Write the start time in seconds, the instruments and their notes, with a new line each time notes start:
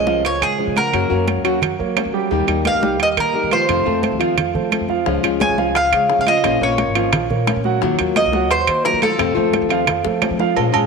Already playing: upright bass C2, cuban tres D#5
0.07 grand piano F3 F4 F5, nylon-string guitar F3 G#3 C#4 F4, high conga
0.24 upright bass C#2, cuban tres C#5, muted nylon-string guitar stroke, high conga, high timbale
0.41 upright bass C#3, grand piano G#3 G#4 C#5, cuban tres G#4, high conga, high timbale
0.58 nylon-string guitar F3 G#3 C#4 F4, grand piano G#3 G#4 C#5, high conga
0.67 upright bass C#3
0.76 cuban tres A#4, grand piano F#5, high conga, high timbale
0.93 upright bass F#2, nylon-string guitar C#3 F#3 A#3 C#4 F#4, high conga, high timbale
1.10 upright bass F#2, nylon-string guitar F#3 A#3 C#4 F#4, grand piano A#3 A#4 C#5, high conga
1.28 high conga, high timbale
1.36 upright bass D#2
1.44 grand piano F#3 F#4 F#5, nylon-string guitar F#3 A#3 C#4 F#4, high conga, high timbale
1.62 upright bass F#2, muted nylon-string guitar stroke, high conga, low conga, high timbale
1.79 upright bass F#3, grand piano A#3 A#4 C#5, high conga
1.96 nylon-string guitar F#3 A#3 C#4 F#4, high conga, high timbale, low timbale
2.05 upright bass F#3
2.13 grand piano G3 G4 G5
2.31 upright bass D#2, nylon-string guitar D#3 G3 A#3 D#4 G4, grand piano G3 G4 G5, high conga
2.47 upright bass D#2, nylon-string guitar G3 A#3 D#4 G4, high conga, high timbale
2.65 grand piano A#3 A#4 D#5, cuban tres F5, high conga, high timbale
2.74 upright bass C2
2.82 grand piano G3 G4 G5, nylon-string guitar G3 A#3 D#4 G4, high conga
2.99 upright bass D#2, cuban tres D#5, muted nylon-string guitar stroke, high conga, high timbale
3.17 upright bass D#3, grand piano A#3 A#4 D#5, cuban tres A#4, high conga, high timbale
3.33 nylon-string guitar G3 A#3 D#4 G4, grand piano A#3 A#4 D#5, high conga
3.43 upright bass D#3
3.51 grand piano F3 F4 F5, cuban tres C5, high conga, high timbale
3.68 upright bass F2, nylon-string guitar C3 F3 A3 C4 F4, high conga, high timbale
3.85 upright bass F2, nylon-string guitar F3 A3 C4 F4, grand piano A3 A4 C5, high conga
4.03 high conga, high timbale
4.12 upright bass D#2
4.20 grand piano F3 F4 F5, nylon-string guitar F3 A3 C4 F4, high conga, high timbale
4.37 upright bass F2, muted nylon-string guitar stroke, high conga, low conga, high timbale
4.54 upright bass F3, grand piano A3 A4 C5, high conga, low conga
4.72 nylon-string guitar F3 A3 C4 F4, high conga, high timbale
4.80 upright bass F2
4.89 grand piano F3 F4 F5, high conga
5.06 upright bass C#2, nylon-string guitar C#3 F3 G#3 C#4 F4, grand piano F3 F4 F5, high bongo, high conga
5.23 upright bass C#2, nylon-string guitar F3 G#3 C#4 F4, high conga, high timbale
5.40 grand piano G#3 G#4 C#5, cuban tres G#5, high bongo, high conga, high timbale
5.49 upright bass C2
5.58 grand piano F3 F4 F5, nylon-string guitar F3 G#3 C#4 F4, high bongo, high conga
5.75 upright bass C#2, cuban tres F5, muted nylon-string guitar stroke, high bongo, high conga, high timbale
5.92 upright bass C#3, grand piano G#3 G#4 C#5, high bongo, high conga, high timbale
6.10 nylon-string guitar F3 G#3 C#4 F4, grand piano G#3 G#4 C#5, high bongo, low bongo, high conga
6.18 upright bass C#3, cuban tres F5
6.27 grand piano F3 F4 F5, cuban tres D#5, high bongo, high conga, high timbale
6.44 upright bass A#1, nylon-string guitar F3 A#3 C#4 F4, high bongo, high conga, high timbale
6.61 upright bass A#1, grand piano A#3 A#4 C#5, nylon-string guitar A#3 C#4 F4, cuban tres C#5, high conga
6.78 high bongo, high conga, high timbale
6.87 upright bass G#1
6.95 grand piano F3 F4 F5, nylon-string guitar A#3 C#4 F4, high bongo, high conga, high timbale
7.12 upright bass A#1, muted nylon-string guitar stroke, high bongo, high conga, low conga, high timbale
7.30 upright bass A#2, grand piano A#3 A#4 C#5, high bongo, high conga, low conga
7.47 nylon-string guitar F3 A#3 C#4 F4, high bongo, low bongo, high conga, high timbale
7.56 upright bass A#2
7.64 grand piano F#3 F#4 F#5, high conga
7.81 upright bass D#2, nylon-string guitar D#3 F#3 A#3 F4, grand piano F#3 F#5, high bongo, high conga
7.99 upright bass D#2, nylon-string guitar F#3 A#3 F4, high conga, high timbale
8.16 grand piano A#3 A#4 D#5, cuban tres D#5, high bongo, high conga, high timbale
8.25 upright bass C2
8.32 grand piano F#3 F#4 F#5, nylon-string guitar F#3 A#3 F4, high bongo, high conga
8.51 upright bass D#2, cuban tres C5, high bongo, high conga, high timbale
8.67 upright bass D#3, grand piano A#3 A#4 D#5, high bongo, high conga, high timbale
8.84 nylon-string guitar D#3 F#3 A#3 F4, grand piano A#3 A#4 D#5, cuban tres A#4, high bongo, low bongo, high conga
8.93 upright bass D#3
9.02 grand piano F4 F5, cuban tres A4, high bongo, high conga, high timbale
9.18 upright bass F2, nylon-string guitar C3 F3 A3 C4 F4, high bongo, high conga, high timbale
9.35 upright bass F2, nylon-string guitar F3 A3 C4 F4, grand piano A3 A4 C5, high conga
9.53 high bongo, high conga, high timbale
9.62 upright bass D#2
9.69 nylon-string guitar F3 A3 C4 F4, grand piano F3 F4 F5, high bongo, high conga, high timbale
9.86 upright bass F2, muted nylon-string guitar stroke, high bongo, high conga, low conga, high timbale
10.04 upright bass F3, grand piano A3 A4 C5, high bongo, high conga
10.21 nylon-string guitar F3 A3 C4 F4, high conga, high timbale, low timbale
10.31 upright bass F3
10.39 grand piano F3 F4 F5, low bongo, high conga
10.56 upright bass A#2, nylon-string guitar F3 G#3 C#4 F4, grand piano F3 F4, cowbell, high conga, low agogo
10.72 upright bass A#2, nylon-string guitar G#3 C#4 F4, grand piano G#3 G#4 G#5, high conga, low agogo